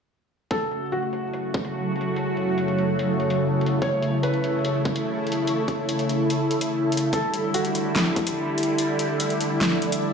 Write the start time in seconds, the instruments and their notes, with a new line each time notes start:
0.51 supersaw synth C#3 A3 F#4, ambient pad F#3, felt piano A4, kick, closed hi-hat
0.61 ambient pad E4
0.71 closed hi-hat
0.76 ambient pad A4
0.92 felt piano F#4, closed hi-hat
1.03 ambient pad C#5, closed hi-hat
1.13 closed hi-hat
1.34 closed hi-hat
1.54 kick, closed hi-hat
1.65 closed hi-hat
1.96 closed hi-hat
2.01 closed hi-hat
2.16 closed hi-hat
2.37 closed hi-hat
2.58 closed hi-hat
2.68 closed hi-hat
2.78 closed hi-hat
2.99 closed hi-hat
3.20 closed hi-hat
3.30 closed hi-hat
3.61 closed hi-hat
3.66 closed hi-hat
3.82 supersaw synth E4, felt piano C#5, kick, closed hi-hat
4.03 closed hi-hat
4.23 felt piano B4, closed hi-hat
4.34 closed hi-hat
4.44 closed hi-hat
4.65 closed hi-hat
4.85 kick, closed hi-hat
4.96 closed hi-hat
5.27 closed hi-hat
5.32 closed hi-hat
5.47 closed hi-hat
5.68 kick, closed hi-hat
5.89 closed hi-hat
5.99 closed hi-hat
6.09 closed hi-hat
6.30 closed hi-hat
6.51 closed hi-hat
6.61 closed hi-hat
6.92 closed hi-hat
6.97 closed hi-hat
7.13 supersaw synth D3 G3, felt piano A4, kick, closed hi-hat
7.34 closed hi-hat
7.54 felt piano F#4, closed hi-hat
7.65 ambient pad D5, closed hi-hat
7.75 closed hi-hat
7.96 snare, closed hi-hat
8.16 kick, closed hi-hat
8.27 closed hi-hat
8.58 closed hi-hat
8.63 closed hi-hat
8.78 closed hi-hat
8.99 closed hi-hat
9.20 closed hi-hat
9.30 closed hi-hat
9.41 closed hi-hat
9.61 snare, closed hi-hat
9.82 closed hi-hat
9.92 closed hi-hat